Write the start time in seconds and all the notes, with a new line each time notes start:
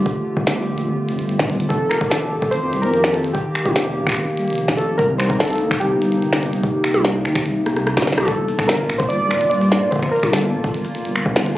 Already playing: D3 A3 F4 G4
0.06 kick, closed hi-hat
0.37 G1, kick
0.47 snare, closed hi-hat
0.68 A#1
0.78 closed hi-hat
0.88 G1
1.09 F1, closed hi-hat
1.19 G1, closed hi-hat
1.29 closed hi-hat
1.39 kick, snare
1.42 kick
1.45 kick
1.47 kick, closed hi-hat
1.50 kick
1.52 kick
1.55 kick
1.57 kick, closed hi-hat
1.69 F1 D#3 A#3 G4 A4, kick, closed hi-hat
1.89 A#4, finger snap
2.01 F1, kick, closed hi-hat
2.10 A4, snare, closed hi-hat
2.32 A#1
2.42 kick, closed hi-hat
2.51 F1 C5, closed hi-hat
2.63 F2
2.73 C2, closed hi-hat
2.82 F2 A#4, closed hi-hat
2.94 closed hi-hat
3.04 finger snap, snare
3.13 A4, closed hi-hat
3.24 closed hi-hat
3.33 G4, kick, closed hi-hat
3.55 finger snap
3.66 F1, kick, closed hi-hat, high tom
3.76 snare, closed hi-hat
3.96 A#1
4.07 finger snap, kick, closed hi-hat
4.09 finger snap
4.12 finger snap
4.14 F1, finger snap, closed hi-hat
4.37 D#1, closed hi-hat
4.48 F1, closed hi-hat
4.50 closed hi-hat
4.53 closed hi-hat
4.55 closed hi-hat
4.58 closed hi-hat
4.68 kick, snare
4.77 A4, closed hi-hat
4.98 C2 C3 D#4 A#4, kick, closed hi-hat
5.18 C5, finger snap
5.29 C2 A#4, kick, closed hi-hat
5.39 A4, snare, closed hi-hat
5.43 closed hi-hat
5.45 closed hi-hat
5.48 closed hi-hat
5.50 closed hi-hat
5.53 closed hi-hat
5.56 closed hi-hat
5.58 D#2, closed hi-hat
5.71 finger snap, kick, closed hi-hat
5.74 closed hi-hat
5.76 closed hi-hat
5.79 G4, closed hi-hat
5.81 C2, closed hi-hat
5.92 G1
6.02 G1, closed hi-hat
6.12 G1, closed hi-hat
6.22 closed hi-hat
6.33 finger snap, snare
6.43 closed hi-hat
6.53 closed hi-hat
6.63 kick, closed hi-hat
6.84 finger snap
6.94 C2, closed hi-hat, high tom
7.05 snare, closed hi-hat
7.25 D#2, finger snap
7.35 finger snap, kick, closed hi-hat
7.46 C2, closed hi-hat
7.66 A#1, cross-stick, closed hi-hat
7.77 C2, cross-stick, closed hi-hat
7.87 cross-stick, closed hi-hat
7.97 G1, kick, cross-stick, snare, high tom
8.02 snare, closed hi-hat
8.07 G1, snare
8.12 snare
8.18 C2, cross-stick, closed hi-hat, high tom
8.20 high tom
8.23 high tom
8.25 G1 A#2 A#3 F4 A4, kick, closed hi-hat, high tom
8.48 open hi-hat
8.59 G1, finger snap, kick, closed hi-hat
8.67 A#4, snare, closed hi-hat
8.90 A#1, finger snap
8.98 C5, kick, closed hi-hat
9.09 G1 D5, closed hi-hat
9.20 G2
9.31 D1, finger snap, closed hi-hat
9.41 G2, closed hi-hat
9.50 D5, closed hi-hat
9.61 open hi-hat
9.72 snare, closed hi-hat
9.91 C5, kick, closed hi-hat
9.96 kick
9.99 finger snap, kick
10.03 kick
10.06 kick
10.09 A#4, kick, open hi-hat
10.16 open hi-hat
10.20 finger snap, closed hi-hat, open hi-hat
10.23 G1, kick, open hi-hat, high tom
10.26 open hi-hat
10.30 A4, snare, open hi-hat
10.38 closed hi-hat
10.54 A#1
10.64 kick, closed hi-hat
10.74 G1, closed hi-hat
10.85 open hi-hat
10.95 F1, closed hi-hat
11.05 G1, closed hi-hat
11.16 finger snap, closed hi-hat
11.26 kick
11.36 snare, closed hi-hat
11.46 closed hi-hat